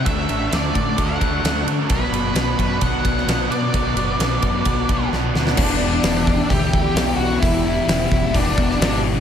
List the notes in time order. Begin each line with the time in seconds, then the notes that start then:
0.05 D2 D3 F#3 A3 D4 F#4 D5 E5 A5, kick, ride
0.29 A1 F#3 A3 D4, ride
0.51 D2 D3 F#3 A3 D4 D5, snare, ride
0.75 A2 D3 F#3 A3 D4, kick, ride
0.97 D2 D3 F#3 A3 D4 F#5, kick, ride
1.19 D2 F#3 A3 D4, kick, ride
1.42 D2 D3 F#3 A3 D4, snare, ride
1.64 D3 F#3 A3 D4, ride
1.87 B1 B2 F#3 B3 D4 B4 B5, kick, ride
2.12 F#1 F#3 B3 D4, ride
2.34 B1 B2 F#3 B3 D4, snare, ride
2.57 F#2 B2 F#3 B3 D4, kick, ride
2.80 B1 B2 F#3 B3 D4 F#5, kick, ride
3.03 B1 F#3 B3 D4, kick, ride
3.17 snare
3.26 B1 B2 F#3 B3 D4, snare, ride
3.49 B2 F#3 B3 D4 D5, ride
3.73 B1 B2 F#3 B3 D4 A5, kick, ride
3.95 F#1 F#3 B3 D4, ride
4.18 B1 B2 F#3 B3 D4, snare, ride
4.42 F#2 B2 F#3 B3 D4, kick, ride
4.65 B1 B2 F#3 B3 D4, kick, ride
4.87 B1 F#3 B3 D4, kick, ride
5.11 B1 B2 F#3 B3 D4, snare
5.34 D2 F#3 B3 D4, snare
5.47 snare
5.57 E1 E2 B2 E3 D4 G4 D5 E5 B5, kick, crash
5.79 E1
6.02 E1 E2 B2 E3, snare, open hi-hat
6.27 kick
6.49 D2 E2 B2 E3 G4, kick, open hi-hat
6.72 B2 E3, kick
6.94 B1 E2 B2 E3, snare, open hi-hat
7.16 B1 F#4
7.40 E1 E2 B2 E3 E4 F#5, kick, open hi-hat
7.87 E1 E2 B2 E3, snare, open hi-hat
8.11 E1, kick
8.33 E1 E2 B2 E3 D4, kick, open hi-hat
8.56 E1 B2 E3, kick
8.71 snare
8.80 G#1 E2 B2 E3, snare, open hi-hat